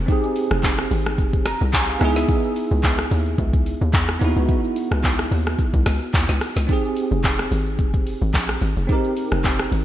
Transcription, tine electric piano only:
0, 0, Header, 1, 2, 480
1, 0, Start_track
1, 0, Key_signature, -4, "minor"
1, 0, Tempo, 550459
1, 73, Time_signature, 4, 2, 24, 8
1, 8586, End_track
2, 0, Start_track
2, 0, Title_t, "Tine electric piano"
2, 0, Program_c, 0, 4
2, 0, Control_c, 0, 64, 127
2, 54, Note_on_c, 0, 60, 71
2, 70, Note_on_c, 0, 63, 65
2, 85, Note_on_c, 0, 67, 71
2, 102, Note_on_c, 0, 68, 81
2, 1281, Note_on_c, 0, 82, 77
2, 1500, Note_off_c, 0, 82, 0
2, 1521, Note_on_c, 0, 80, 81
2, 1640, Note_off_c, 0, 80, 0
2, 1652, Note_on_c, 0, 77, 76
2, 1710, Note_off_c, 0, 60, 0
2, 1718, Note_off_c, 0, 63, 0
2, 1726, Note_off_c, 0, 67, 0
2, 1734, Note_off_c, 0, 68, 0
2, 1736, Note_on_c, 0, 59, 79
2, 1749, Note_off_c, 0, 77, 0
2, 1751, Note_on_c, 0, 63, 76
2, 1760, Note_on_c, 0, 76, 76
2, 1764, Control_c, 0, 64, 0
2, 1767, Note_on_c, 0, 64, 74
2, 1783, Note_on_c, 0, 68, 89
2, 1926, Control_c, 0, 64, 127
2, 1980, Note_off_c, 0, 76, 0
2, 3629, Note_off_c, 0, 59, 0
2, 3637, Note_off_c, 0, 63, 0
2, 3645, Note_off_c, 0, 64, 0
2, 3653, Note_off_c, 0, 68, 0
2, 3654, Note_on_c, 0, 59, 78
2, 3670, Note_on_c, 0, 63, 73
2, 3685, Note_on_c, 0, 64, 76
2, 3701, Note_on_c, 0, 66, 86
2, 5549, Note_off_c, 0, 59, 0
2, 5557, Note_off_c, 0, 63, 0
2, 5564, Note_off_c, 0, 64, 0
2, 5572, Note_off_c, 0, 66, 0
2, 5816, Note_on_c, 0, 60, 77
2, 5831, Note_on_c, 0, 63, 65
2, 5842, Control_c, 0, 64, 0
2, 5847, Note_on_c, 0, 67, 68
2, 5863, Note_on_c, 0, 68, 82
2, 5982, Control_c, 0, 64, 127
2, 7710, Note_off_c, 0, 60, 0
2, 7717, Note_off_c, 0, 63, 0
2, 7725, Note_off_c, 0, 67, 0
2, 7733, Note_off_c, 0, 68, 0
2, 7736, Note_on_c, 0, 60, 76
2, 7751, Note_on_c, 0, 63, 72
2, 7767, Note_on_c, 0, 67, 72
2, 7783, Note_on_c, 0, 70, 81
2, 8586, Note_off_c, 0, 60, 0
2, 8586, Note_off_c, 0, 63, 0
2, 8586, Note_off_c, 0, 67, 0
2, 8586, Note_off_c, 0, 70, 0
2, 8586, End_track
0, 0, End_of_file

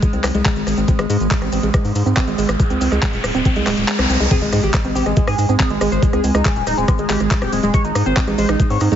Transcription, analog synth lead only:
0, 0, Header, 1, 2, 480
1, 0, Start_track
1, 0, Key_signature, -4, "major"
1, 0, Tempo, 428571
1, 988, Time_signature, 4, 2, 24, 8
1, 10032, End_track
2, 0, Start_track
2, 0, Title_t, "Analog synth lead"
2, 0, Program_c, 0, 81
2, 4828, Note_on_c, 0, 68, 101
2, 4897, Note_off_c, 0, 68, 0
2, 4949, Note_on_c, 0, 56, 66
2, 5017, Note_off_c, 0, 56, 0
2, 5069, Note_on_c, 0, 56, 64
2, 5137, Note_off_c, 0, 56, 0
2, 5189, Note_on_c, 0, 67, 93
2, 5257, Note_off_c, 0, 67, 0
2, 5309, Note_on_c, 0, 56, 67
2, 5377, Note_off_c, 0, 56, 0
2, 5429, Note_on_c, 0, 56, 65
2, 5497, Note_off_c, 0, 56, 0
2, 5549, Note_on_c, 0, 67, 97
2, 5617, Note_off_c, 0, 67, 0
2, 5669, Note_on_c, 0, 56, 68
2, 5737, Note_off_c, 0, 56, 0
2, 5789, Note_on_c, 0, 56, 69
2, 5857, Note_off_c, 0, 56, 0
2, 5908, Note_on_c, 0, 68, 98
2, 5977, Note_off_c, 0, 68, 0
2, 6029, Note_on_c, 0, 56, 65
2, 6097, Note_off_c, 0, 56, 0
2, 6149, Note_on_c, 0, 56, 67
2, 6217, Note_off_c, 0, 56, 0
2, 6269, Note_on_c, 0, 68, 93
2, 6337, Note_off_c, 0, 68, 0
2, 6389, Note_on_c, 0, 56, 67
2, 6457, Note_off_c, 0, 56, 0
2, 6508, Note_on_c, 0, 56, 67
2, 6576, Note_off_c, 0, 56, 0
2, 6629, Note_on_c, 0, 72, 93
2, 6697, Note_off_c, 0, 72, 0
2, 6749, Note_on_c, 0, 56, 69
2, 6817, Note_off_c, 0, 56, 0
2, 6869, Note_on_c, 0, 68, 92
2, 6937, Note_off_c, 0, 68, 0
2, 6989, Note_on_c, 0, 56, 66
2, 7057, Note_off_c, 0, 56, 0
2, 7109, Note_on_c, 0, 63, 98
2, 7177, Note_off_c, 0, 63, 0
2, 7229, Note_on_c, 0, 56, 63
2, 7297, Note_off_c, 0, 56, 0
2, 7349, Note_on_c, 0, 56, 65
2, 7417, Note_off_c, 0, 56, 0
2, 7469, Note_on_c, 0, 63, 98
2, 7537, Note_off_c, 0, 63, 0
2, 7589, Note_on_c, 0, 56, 68
2, 7657, Note_off_c, 0, 56, 0
2, 7709, Note_on_c, 0, 56, 66
2, 7777, Note_off_c, 0, 56, 0
2, 7829, Note_on_c, 0, 56, 67
2, 7897, Note_off_c, 0, 56, 0
2, 7948, Note_on_c, 0, 67, 93
2, 8017, Note_off_c, 0, 67, 0
2, 8069, Note_on_c, 0, 56, 65
2, 8137, Note_off_c, 0, 56, 0
2, 8189, Note_on_c, 0, 56, 61
2, 8257, Note_off_c, 0, 56, 0
2, 8309, Note_on_c, 0, 67, 95
2, 8377, Note_off_c, 0, 67, 0
2, 8429, Note_on_c, 0, 56, 66
2, 8497, Note_off_c, 0, 56, 0
2, 8549, Note_on_c, 0, 56, 67
2, 8617, Note_off_c, 0, 56, 0
2, 8668, Note_on_c, 0, 73, 100
2, 8737, Note_off_c, 0, 73, 0
2, 8788, Note_on_c, 0, 63, 66
2, 8856, Note_off_c, 0, 63, 0
2, 8908, Note_on_c, 0, 63, 65
2, 8977, Note_off_c, 0, 63, 0
2, 9028, Note_on_c, 0, 72, 96
2, 9097, Note_off_c, 0, 72, 0
2, 9148, Note_on_c, 0, 63, 65
2, 9216, Note_off_c, 0, 63, 0
2, 9269, Note_on_c, 0, 63, 65
2, 9337, Note_off_c, 0, 63, 0
2, 9388, Note_on_c, 0, 72, 99
2, 9457, Note_off_c, 0, 72, 0
2, 9509, Note_on_c, 0, 63, 67
2, 9577, Note_off_c, 0, 63, 0
2, 9629, Note_on_c, 0, 63, 66
2, 9697, Note_off_c, 0, 63, 0
2, 9748, Note_on_c, 0, 73, 98
2, 9817, Note_off_c, 0, 73, 0
2, 9868, Note_on_c, 0, 63, 63
2, 9937, Note_off_c, 0, 63, 0
2, 9988, Note_on_c, 0, 63, 65
2, 10032, Note_off_c, 0, 63, 0
2, 10032, End_track
0, 0, End_of_file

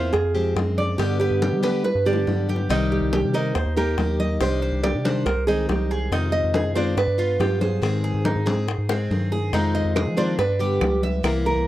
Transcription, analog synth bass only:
0, 0, Header, 1, 2, 480
1, 0, Start_track
1, 0, Tempo, 427046
1, 1115, Time_signature, 4, 2, 24, 8
1, 13122, End_track
2, 0, Start_track
2, 0, Title_t, "Analog synth bass"
2, 0, Program_c, 0, 38
2, 0, Note_on_c, 0, 40, 87
2, 136, Note_off_c, 0, 40, 0
2, 155, Note_on_c, 0, 41, 117
2, 263, Note_off_c, 0, 41, 0
2, 270, Note_on_c, 0, 41, 93
2, 614, Note_off_c, 0, 41, 0
2, 628, Note_on_c, 0, 42, 91
2, 1087, Note_off_c, 0, 42, 0
2, 1110, Note_on_c, 0, 43, 112
2, 1454, Note_off_c, 0, 43, 0
2, 1473, Note_on_c, 0, 43, 88
2, 1708, Note_on_c, 0, 55, 89
2, 1725, Note_off_c, 0, 43, 0
2, 2168, Note_off_c, 0, 55, 0
2, 2192, Note_on_c, 0, 43, 91
2, 2536, Note_off_c, 0, 43, 0
2, 2555, Note_on_c, 0, 43, 97
2, 3012, Note_off_c, 0, 43, 0
2, 3027, Note_on_c, 0, 36, 103
2, 3374, Note_off_c, 0, 36, 0
2, 3395, Note_on_c, 0, 36, 77
2, 3639, Note_on_c, 0, 48, 79
2, 3656, Note_off_c, 0, 36, 0
2, 3980, Note_off_c, 0, 48, 0
2, 3994, Note_on_c, 0, 39, 120
2, 4105, Note_off_c, 0, 39, 0
2, 4112, Note_on_c, 0, 39, 100
2, 4456, Note_off_c, 0, 39, 0
2, 4471, Note_on_c, 0, 39, 99
2, 4930, Note_off_c, 0, 39, 0
2, 4949, Note_on_c, 0, 36, 113
2, 5295, Note_off_c, 0, 36, 0
2, 5306, Note_on_c, 0, 36, 78
2, 5553, Note_on_c, 0, 48, 88
2, 5569, Note_off_c, 0, 36, 0
2, 5897, Note_off_c, 0, 48, 0
2, 5909, Note_on_c, 0, 36, 118
2, 6024, Note_off_c, 0, 36, 0
2, 6030, Note_on_c, 0, 36, 88
2, 6376, Note_off_c, 0, 36, 0
2, 6397, Note_on_c, 0, 36, 97
2, 6853, Note_off_c, 0, 36, 0
2, 6872, Note_on_c, 0, 41, 110
2, 7216, Note_off_c, 0, 41, 0
2, 7237, Note_on_c, 0, 41, 82
2, 7480, Note_on_c, 0, 42, 87
2, 7496, Note_off_c, 0, 41, 0
2, 7820, Note_off_c, 0, 42, 0
2, 7833, Note_on_c, 0, 43, 113
2, 7947, Note_off_c, 0, 43, 0
2, 7953, Note_on_c, 0, 43, 90
2, 8297, Note_off_c, 0, 43, 0
2, 8312, Note_on_c, 0, 43, 95
2, 8770, Note_off_c, 0, 43, 0
2, 8789, Note_on_c, 0, 44, 110
2, 9135, Note_off_c, 0, 44, 0
2, 9150, Note_on_c, 0, 44, 82
2, 9381, Note_off_c, 0, 44, 0
2, 9392, Note_on_c, 0, 44, 91
2, 9850, Note_off_c, 0, 44, 0
2, 9872, Note_on_c, 0, 44, 79
2, 10216, Note_off_c, 0, 44, 0
2, 10235, Note_on_c, 0, 43, 90
2, 10692, Note_off_c, 0, 43, 0
2, 10711, Note_on_c, 0, 41, 112
2, 11055, Note_off_c, 0, 41, 0
2, 11071, Note_on_c, 0, 41, 86
2, 11314, Note_on_c, 0, 53, 86
2, 11331, Note_off_c, 0, 41, 0
2, 11657, Note_off_c, 0, 53, 0
2, 11673, Note_on_c, 0, 43, 102
2, 11781, Note_off_c, 0, 43, 0
2, 11788, Note_on_c, 0, 43, 91
2, 12134, Note_off_c, 0, 43, 0
2, 12150, Note_on_c, 0, 37, 103
2, 12609, Note_off_c, 0, 37, 0
2, 12627, Note_on_c, 0, 36, 118
2, 12974, Note_off_c, 0, 36, 0
2, 12989, Note_on_c, 0, 36, 81
2, 13122, Note_off_c, 0, 36, 0
2, 13122, End_track
0, 0, End_of_file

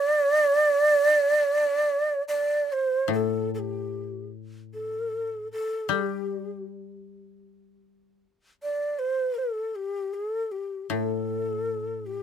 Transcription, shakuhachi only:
0, 0, Header, 1, 2, 480
1, 0, Start_track
1, 0, Tempo, 825309
1, 1808, Time_signature, 4, 2, 24, 8
1, 1808, Tempo, 802139
1, 3248, Tempo, 770218
1, 7431, End_track
2, 0, Start_track
2, 0, Title_t, "Shakuhachi"
2, 0, Program_c, 0, 77
2, 0, Note_on_c, 0, 74, 103
2, 1297, Note_off_c, 0, 74, 0
2, 1327, Note_on_c, 0, 74, 84
2, 1584, Note_on_c, 0, 72, 83
2, 1592, Note_off_c, 0, 74, 0
2, 1816, Note_off_c, 0, 72, 0
2, 1823, Note_on_c, 0, 69, 58
2, 2042, Note_off_c, 0, 69, 0
2, 2069, Note_on_c, 0, 69, 46
2, 2097, Note_on_c, 0, 67, 50
2, 2103, Note_off_c, 0, 69, 0
2, 2520, Note_off_c, 0, 67, 0
2, 2783, Note_on_c, 0, 69, 62
2, 3227, Note_off_c, 0, 69, 0
2, 3253, Note_on_c, 0, 69, 66
2, 3476, Note_off_c, 0, 69, 0
2, 3494, Note_on_c, 0, 67, 57
2, 3950, Note_off_c, 0, 67, 0
2, 5187, Note_on_c, 0, 74, 72
2, 5412, Note_on_c, 0, 72, 69
2, 5422, Note_off_c, 0, 74, 0
2, 5656, Note_on_c, 0, 69, 61
2, 5666, Note_off_c, 0, 72, 0
2, 5890, Note_on_c, 0, 67, 63
2, 5899, Note_off_c, 0, 69, 0
2, 6129, Note_on_c, 0, 69, 63
2, 6138, Note_off_c, 0, 67, 0
2, 6364, Note_on_c, 0, 67, 51
2, 6373, Note_off_c, 0, 69, 0
2, 6604, Note_off_c, 0, 67, 0
2, 6613, Note_on_c, 0, 69, 65
2, 7328, Note_on_c, 0, 67, 53
2, 7337, Note_off_c, 0, 69, 0
2, 7431, Note_off_c, 0, 67, 0
2, 7431, End_track
0, 0, End_of_file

